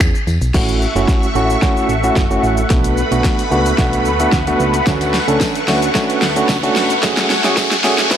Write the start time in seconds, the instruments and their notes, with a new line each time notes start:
Already playing: tine electric piano B3 C#4 E4 G#4
0.00 fm bass E2, finger snap, kick, tambourine, shaker
0.15 shaker
0.27 fm bass E2, tambourine, shaker
0.41 fm bass B1, tambourine, shaker
0.54 fm bass A1, tine electric piano A3 C#4 E4 F#4, supersaw synth A3 E5 F#5 C#6, kick, snare, crash, riser, shaker
0.69 shaker
0.82 shaker
0.96 fm bass F#1, tine electric piano A3 C#4 E4 F#4, shaker
1.08 kick, snare, shaker
1.23 shaker
1.35 fm bass A1, tine electric piano A3 C#4 E4 F#4, shaker
1.50 shaker
1.62 tine electric piano A3 C#4 E4 F#4, kick, snare, shaker
1.77 shaker
1.89 fm bass A1, shaker
2.03 tine electric piano A3 C#4 E4 F#4, shaker
2.16 fm bass F#1, kick, snare, shaker
2.30 tine electric piano A3 C#4 E4 F#4, shaker
2.43 fm bass A1, shaker
2.57 shaker
2.70 fm bass B1, tine electric piano A3 B3 D4 F#4, supersaw synth B4 B5, kick, snare, closed hi-hat, shaker
2.84 closed hi-hat, shaker
2.97 shaker
3.11 fm bass B1, tine electric piano A3 B3 D4 F#4, closed hi-hat, shaker
3.24 kick, snare, closed hi-hat, shaker
3.39 closed hi-hat, shaker
3.51 fm bass C#2, tine electric piano A3 B3 D4 F#4, shaker
3.66 closed hi-hat, shaker
3.78 fm bass B1, tine electric piano A3 B3 D4 F#4, kick, snare, closed hi-hat, shaker
3.93 closed hi-hat, shaker
4.05 fm bass D2, shaker
4.20 tine electric piano A3 B3 D4 F#4, closed hi-hat, shaker
4.32 fm bass D2, kick, snare, closed hi-hat, shaker
4.47 tine electric piano A3 B3 D4 F#4, closed hi-hat, shaker
4.60 fm bass C#2, shaker
4.74 closed hi-hat, shaker
4.87 fm bass D2, tine electric piano A3 C#4 D4 F#4, supersaw synth C#6, kick, snare, closed hi-hat, tambourine, shaker
5.01 closed hi-hat, tambourine, shaker
5.14 snare, open hi-hat, tambourine, shaker
5.28 fm bass C#2, tine electric piano A3 C#4 D4 A4, closed hi-hat, shaker
5.41 kick, snare, closed hi-hat, tambourine, shaker
5.55 closed hi-hat, shaker
5.68 fm bass D2, tine electric piano A3 C#4 D4 F#4, snare, open hi-hat, tambourine, shaker
5.82 closed hi-hat, tambourine, shaker
5.95 tine electric piano A3 C#4 D4 F#4, kick, snare, closed hi-hat, tambourine, shaker
6.10 closed hi-hat, shaker
6.22 fm bass D2, snare, open hi-hat, tambourine, shaker
6.36 tine electric piano A3 C#4 D4 F#4, closed hi-hat, shaker
6.49 fm bass C#2, kick, snare, closed hi-hat, tambourine, shaker
6.63 tine electric piano A3 C#4 D4 F#4, closed hi-hat, shaker
6.76 fm bass E1, snare, open hi-hat, tambourine, shaker
6.90 closed hi-hat, tambourine, shaker
7.03 fm bass F#1, tine electric piano A3 C#4 F#4 G#4, supersaw synth G#5, kick, snare, closed hi-hat, tambourine, shaker
7.17 snare, closed hi-hat, shaker
7.30 snare, open hi-hat, tambourine, shaker
7.44 fm bass F#1, tine electric piano A3 C#4 F#4 G#4, snare, closed hi-hat, shaker
7.57 kick, snare, closed hi-hat, tambourine, shaker
7.71 snare, closed hi-hat, shaker
7.84 fm bass G#1, tine electric piano A3 C#4 F#4 G#4, snare, open hi-hat, tambourine, shaker
7.98 snare, closed hi-hat, tambourine, shaker
8.11 fm bass F#1, tine electric piano A3 C#4 F#4 B4, kick, snare, closed hi-hat, tambourine, shaker